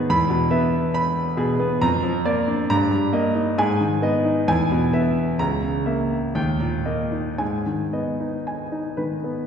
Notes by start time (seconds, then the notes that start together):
Already playing: D#3 D#4 G#4 B5
0.10 E2 B5
0.30 B2
0.51 B3 E5
0.94 B5
1.37 B2 G#4
1.60 B3
1.81 F2 A#5
2.03 F3
2.25 A#3 D5
2.48 D4
2.70 G2 A#5
2.91 G3
3.13 A#3 D#5
3.35 D#4
3.58 G#2 G#5
3.81 D#3
4.02 B3 D#5
4.25 D#4
4.48 E2 G#5
4.72 B2
4.93 B3 E5
5.39 C#2 A#5
5.63 C#3
5.86 A#3 E5
6.35 D#2 G5
6.60 A#2
6.85 A#3 D#5
7.12 D#4
7.38 G#2 G#5
7.66 D#3
7.93 B3 D#5
8.20 D#4
8.47 G#5
8.72 D#4
8.97 D#3 B4
9.24 B3